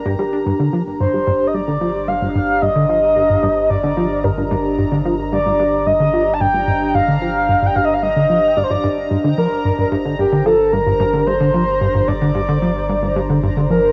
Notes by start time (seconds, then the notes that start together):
Already playing: G1 D4 G4 A#4 A#5
0.05 G2
0.19 G3
0.45 G1 G2 A#5
0.59 D3
0.73 F3
0.99 G2 C5
1.13 G2
1.27 G2
1.47 D#5
1.54 G2 D5
1.67 D3
1.81 F3
2.08 G2 F5
2.21 G2
2.35 G2
2.62 G2 D#5
2.76 D3
2.89 F3
3.16 G2
3.30 G2
3.43 G2
3.70 G2 D5
3.84 D3
3.97 F3
4.24 G2 A#4
4.38 G2
4.51 G2
4.78 G2
4.92 D3
5.05 F3
5.32 G2 D5
5.46 G2
5.59 G2
5.86 G2 D#5
6.00 D3
6.13 F3
6.33 A5
6.40 G2 G5
6.54 G2
6.67 G2
6.94 G2 F5
7.08 D3
7.21 F3
7.48 G2
7.62 G2
7.66 G5
7.75 G2 F5
7.85 D#5
7.94 F5
8.03 G2 D#5
8.16 D3
8.30 F3
8.57 G2 D5
8.64 C5
8.70 G2 D5
8.84 G2
9.11 G1 G2
9.24 D3
9.38 F3 A#4
9.65 G2
9.78 G2
9.92 G2
10.05 D3
10.19 G2 G4
10.32 D3
10.46 F3 A4
10.73 G2 A#4
10.86 G2
11.00 G2
11.13 D3
11.26 G2 C5
11.40 D3
11.54 F3
11.81 G2
11.95 G2
12.08 G2 D5
12.22 D3
12.35 G2
12.49 D3
12.62 F3
12.89 G2
13.03 G2
13.16 G2
13.30 D3
13.43 G2
13.57 D3
13.70 F3 A#4